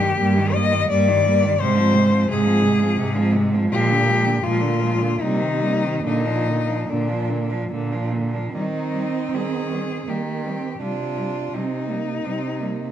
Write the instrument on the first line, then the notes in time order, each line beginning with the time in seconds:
cello
Already playing: G4
0.00 D#3 G3
0.18 G2 G3 A#3
0.36 D#3 G3
0.53 G3 A#3 D#5
0.71 D#3 G3
0.89 G2 G3 A#3 D5
1.08 D#3 G3
1.25 G3 A#3
1.44 D#3 G3
1.59 G#2 C3 G#3 C5
1.76 F3 C4
1.94 C3 G#3
2.12 F3 C4
2.28 G#2 C3 G#3 G#4
2.44 F3 C4
2.63 C3 G#3
2.80 F3 C4
2.97 G#2 C3 G#3
3.16 F3 C4
3.35 C3 G#3
3.54 F3 C4
3.71 A#2 F3 G#3 G4
3.89 D3 A#3
4.07 F3 G#3
4.25 D3 A#3
4.43 A#2 F3 G#3 F4
4.61 D3 A#3
4.81 F3 G#3
5.00 D3 A#3
5.21 C3 G3 A#3 D#4
5.40 D#3 C4
5.61 G3 A#3
5.83 D#3 C4
6.04 A#2 D3 A#3 D#4
6.25 F3 D4
6.47 D3 A#3
6.67 F3 D4
6.88 A#2 D3 A#3 D4
7.08 F3 D4
7.29 D3 A#3
7.50 F3 D4
7.70 A#2 D3 A#3
7.91 F3 D4
8.12 D3 A#3
8.33 F3 D4
8.52 D#3 G3 C4 D#4
8.93 G3
9.32 D#3 G3 G#4
9.72 G3
10.07 D#3 G3 A#3 G4
10.45 G3 C4
10.80 C3 G3 D4 F4
11.16 G3
11.52 C3 G3 C4 D#4
11.87 G3 A#3
12.24 C3 G3 C4
12.60 G3 A#3